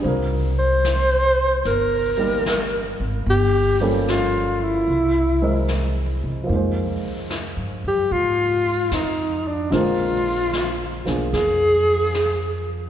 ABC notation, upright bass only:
X:1
M:4/4
L:1/8
Q:"Swing" 1/4=74
K:Cm
V:1 name="Upright bass" clef=bass
C,,4 G,,,3 A,,, | G,,,4 C,,3 C, | F,,2- (3F,, G,, _G,, A,,2 F,,2 | B,,,3 _C,, F,,4 |]